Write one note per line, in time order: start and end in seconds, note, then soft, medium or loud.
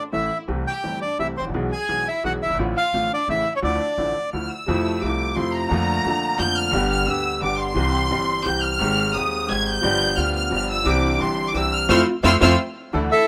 0.12 0.28 A1 soft
0.12 0.28 A2 soft
0.12 0.28 E3 soft
0.12 0.28 A3 soft
0.12 0.28 C#4 soft
0.12 0.38 E4 medium
0.12 0.28 A4 soft
0.12 0.38 E5 medium
0.48 0.63 C2 medium
0.48 0.64 C2 medium
0.48 0.63 C3 soft
0.48 0.63 E3 soft
0.48 0.63 A3 soft
0.48 0.63 C4 soft
0.48 0.64 G4 soft
0.67 1.00 G4 medium
0.67 1.00 G5 medium
0.83 0.99 G1 soft
0.83 0.99 G2 soft
0.83 0.99 E3 soft
0.83 0.99 A3 soft
0.83 0.99 C4 soft
0.83 0.99 G4 soft
1.02 1.18 D4 soft
1.02 1.18 D5 medium
1.19 1.34 C2 soft
1.19 1.34 C3 soft
1.19 1.34 E3 soft
1.19 1.34 A3 soft
1.19 1.34 C4 soft
1.19 1.27 E4 soft
1.19 1.34 G4 soft
1.19 1.27 E5 medium
1.37 1.45 G#1 soft
1.37 1.44 G#1 soft
1.37 1.45 C4 medium
1.37 1.45 C5 medium
1.45 1.49 A1 soft
1.49 1.53 A#1 medium
1.49 1.54 A#1 soft
1.54 1.69 B1 medium
1.54 1.69 B2 medium
1.54 1.69 E3 medium
1.54 1.69 G#3 soft
1.54 1.69 B3 soft
1.54 1.69 G#4 medium
1.72 2.04 G#4 medium
1.72 2.08 G#5 medium
1.89 2.04 B1 soft
1.89 2.03 B2 soft
1.89 2.04 E3 soft
1.89 2.04 G#3 soft
1.89 2.04 B3 soft
1.89 2.04 G#4 soft
2.07 2.23 E4 medium
2.07 2.23 E5 medium
2.24 2.38 B1 soft
2.24 2.39 B1 soft
2.24 2.39 B2 soft
2.24 2.38 E3 soft
2.24 2.38 G#3 soft
2.24 2.39 B3 soft
2.24 2.32 F#4 medium
2.24 2.39 G#4 soft
2.24 2.33 F#5 medium
2.42 2.50 F#1 soft
2.42 2.58 E4 medium
2.42 2.58 E5 medium
2.50 2.54 G1 soft
2.50 2.53 G1 soft
2.54 2.58 G#1 medium
2.54 2.57 G#1 soft
2.58 2.73 A1 medium
2.58 2.73 A2 medium
2.58 2.73 D3 medium
2.58 2.73 F3 soft
2.58 2.73 A3 soft
2.58 2.73 F4 medium
2.77 3.09 F4 medium
2.77 3.12 F5 medium
2.93 3.08 A1 soft
2.93 3.08 A2 soft
2.93 3.08 D3 soft
2.93 3.08 F3 soft
2.93 3.08 A3 soft
2.93 3.08 F4 soft
3.12 3.27 D4 medium
3.12 3.28 D5 medium
3.28 3.43 A1 soft
3.28 3.43 A2 soft
3.28 3.43 C#3 soft
3.28 3.43 E3 soft
3.28 3.43 A3 soft
3.28 3.53 E4 medium
3.28 3.43 E4 soft
3.28 3.53 E5 medium
3.54 3.58 C#4 medium
3.54 3.60 C#5 medium
3.62 3.77 D2 medium
3.62 3.78 D2 medium
3.62 3.77 D3 medium
3.62 3.77 F3 soft
3.62 3.78 A3 soft
3.62 4.30 D4 medium
3.62 3.78 E4 medium
3.62 4.30 D5 medium
3.98 4.13 A1 soft
3.98 4.13 A2 soft
3.98 4.13 D3 soft
3.98 4.13 F3 soft
3.98 4.13 A3 soft
3.98 4.13 E4 soft
4.33 4.48 D2 soft
4.33 4.48 D3 soft
4.33 4.48 F3 soft
4.33 4.48 A3 soft
4.33 4.48 E4 soft
4.33 4.49 F6 medium
4.51 5.03 E6 medium
4.66 5.01 F2 medium
4.66 4.99 C3 soft
4.66 5.01 F3 medium
4.66 5.01 A3 medium
4.66 5.02 A3 medium
4.66 5.01 E4 medium
4.66 5.02 E4 medium
5.01 5.35 C2 soft
5.01 5.33 C3 soft
5.01 5.35 F3 soft
5.01 5.35 A3 soft
5.01 5.36 A3 soft
5.01 5.35 E4 soft
5.01 5.36 E4 soft
5.01 5.37 D6 medium
5.35 5.69 F2 soft
5.35 5.70 F2 soft
5.35 5.68 C3 soft
5.35 5.69 F3 soft
5.35 5.70 A3 soft
5.35 5.69 A3 soft
5.35 5.70 E4 soft
5.35 5.54 C6 medium
5.39 5.70 E4 soft
5.55 6.40 A#5 loud
5.69 6.04 F2 medium
5.69 6.02 D3 medium
5.69 6.04 F3 medium
5.69 6.03 A3 medium
5.69 6.04 A3 medium
5.69 6.04 A#3 medium
5.69 6.04 D4 medium
5.73 6.05 F4 medium
6.03 6.38 F2 soft
6.03 6.36 D3 soft
6.03 6.38 F3 soft
6.03 6.37 A3 soft
6.03 6.38 A3 soft
6.03 6.38 A#3 soft
6.03 6.38 D4 soft
6.07 6.39 F4 soft
6.37 6.72 F2 soft
6.37 6.72 F2 medium
6.37 6.69 D3 soft
6.37 6.72 F3 soft
6.37 6.71 A3 soft
6.37 6.72 A#3 soft
6.37 6.72 D4 soft
6.37 6.72 A4 medium
6.37 6.56 G6 loud
6.41 6.73 F4 soft
6.57 6.89 F6 loud
6.71 7.06 G1 medium
6.71 7.06 G2 medium
6.71 7.04 D3 medium
6.71 7.05 G3 medium
6.71 7.06 B3 medium
6.71 7.06 D4 medium
6.71 7.06 G4 medium
6.75 7.07 G4 medium
6.90 7.06 F6 medium
7.06 7.40 D2 soft
7.06 7.39 D3 soft
7.06 7.40 G3 soft
7.06 7.40 B3 soft
7.06 7.40 D4 soft
7.06 7.41 G4 medium
7.06 7.41 G4 soft
7.06 7.42 E6 loud
7.40 7.74 G1 soft
7.40 7.75 G2 soft
7.40 7.74 D3 soft
7.40 7.74 G3 soft
7.40 7.75 B3 soft
7.40 7.75 D4 soft
7.40 7.75 G4 medium
7.40 7.76 G4 soft
7.40 7.58 D6 medium
7.59 8.46 C6 loud
7.74 8.09 C2 medium
7.74 8.09 C3 medium
7.74 8.08 E3 medium
7.74 8.09 G3 soft
7.74 8.09 C4 medium
7.74 8.09 C4 soft
7.74 8.09 E4 medium
7.74 8.09 G4 medium
7.74 8.10 G4 medium
8.09 8.44 G1 soft
8.09 8.44 G2 soft
8.09 8.42 E3 soft
8.09 8.44 G3 soft
8.09 8.44 C4 soft
8.09 8.45 C4 soft
8.09 8.44 E4 soft
8.09 8.44 G4 medium
8.09 8.45 G4 soft
8.44 8.79 C2 soft
8.44 8.79 C3 soft
8.44 8.78 E3 soft
8.44 8.79 G3 soft
8.44 8.79 C4 soft
8.44 8.79 E4 soft
8.44 8.79 G4 soft
8.44 8.63 G6 loud
8.48 8.80 G4 soft
8.62 9.15 F6 loud
8.79 9.14 G#1 medium
8.79 9.14 G#2 medium
8.79 9.12 D#3 medium
8.79 9.13 G#3 medium
8.79 9.14 G#3 medium
8.79 9.14 C4 medium
8.79 9.14 C4 soft
8.79 9.14 G4 medium
8.83 9.15 G4 medium
9.13 9.48 D#1 soft
9.13 9.48 D#2 soft
9.13 9.45 D#3 soft
9.13 9.47 G#3 soft
9.13 9.48 G#3 soft
9.13 9.48 C4 soft
9.13 9.48 G4 soft
9.13 9.49 G4 soft
9.13 9.50 D#6 medium
9.47 9.82 G#1 soft
9.47 9.82 G#2 soft
9.47 9.81 D#3 soft
9.47 9.81 G#3 soft
9.47 9.82 G#3 soft
9.47 9.82 C4 soft
9.47 9.82 G4 medium
9.47 9.67 G#6 loud
9.51 9.83 G4 soft
9.67 10.18 G6 loud
9.81 10.16 G1 medium
9.81 10.16 G2 medium
9.81 10.14 F3 medium
9.81 10.16 G3 medium
9.81 10.15 B3 medium
9.81 10.16 B3 medium
9.81 10.16 D4 medium
9.81 10.16 F4 medium
9.81 10.17 G4 medium
10.15 10.50 D2 medium
10.15 10.50 D2 soft
10.15 10.50 D3 soft
10.15 10.48 F3 soft
10.15 10.50 G3 soft
10.15 10.49 B3 soft
10.15 10.50 B3 soft
10.15 10.50 D4 soft
10.15 10.50 F4 medium
10.15 10.34 F6 loud
10.19 10.51 G4 soft
10.35 10.51 F6 medium
10.50 10.84 G1 medium
10.50 10.84 G1 soft
10.50 10.84 G2 medium
10.50 10.83 F3 soft
10.50 10.84 G3 medium
10.50 10.84 B3 soft
10.50 10.85 D4 soft
10.50 10.84 F4 medium
10.50 10.68 F6 loud
10.54 10.85 G4 soft
10.70 10.86 E6 loud
10.84 11.18 C2 medium
10.84 11.19 C2 medium
10.84 11.19 C3 medium
10.84 11.17 E3 medium
10.84 11.18 C4 medium
10.84 11.19 C4 medium
10.84 11.19 D4 medium
10.84 11.19 E4 medium
10.84 11.20 G4 medium
10.84 11.21 D6 medium
11.18 11.53 G1 medium
11.18 11.53 G1 soft
11.18 11.53 G2 soft
11.18 11.51 E3 soft
11.18 11.53 C4 soft
11.18 11.53 C4 medium
11.18 11.53 D4 soft
11.18 11.53 E4 medium
11.18 11.54 G4 soft
11.18 11.47 C6 medium
11.48 11.56 D6 medium
11.53 11.87 C2 medium
11.53 11.88 C2 medium
11.53 11.88 C3 soft
11.53 11.87 E3 soft
11.53 11.87 C4 soft
11.53 11.88 D4 soft
11.53 11.88 E4 medium
11.53 11.73 E6 loud
11.57 11.89 G4 soft
11.73 11.88 F6 loud
11.89 12.02 F2 loud
11.89 12.00 F3 medium
11.89 12.00 A3 loud
11.89 12.00 C4 loud
11.89 12.00 E4 loud
11.89 12.00 F4 loud
11.89 12.01 C6 medium
11.89 12.01 E6 medium
11.89 12.00 F6 medium
12.23 12.37 F2 medium
12.23 12.35 F3 medium
12.23 12.35 A3 loud
12.23 12.35 C4 loud
12.23 12.35 C4 medium
12.23 12.35 E4 loud
12.23 12.35 F4 loud
12.23 12.36 C6 medium
12.23 12.36 E6 medium
12.23 12.36 F6 loud
12.41 12.55 F2 medium
12.41 12.52 F3 medium
12.41 12.52 A3 loud
12.41 12.52 C4 loud
12.41 12.52 E4 medium
12.41 12.53 F4 loud
12.41 12.53 C6 medium
12.41 12.53 E6 medium
12.41 12.53 F6 loud
12.93 13.08 D2 medium
12.93 13.09 D2 medium
12.93 13.09 D3 medium
12.93 13.08 E3 medium
12.93 13.08 A3 medium
12.93 13.09 A3 medium
12.93 13.09 D4 medium
12.93 13.09 E4 medium
12.93 13.09 A4 medium
13.12 13.28 E4 medium
13.12 13.28 A4 medium
13.12 13.28 E5 medium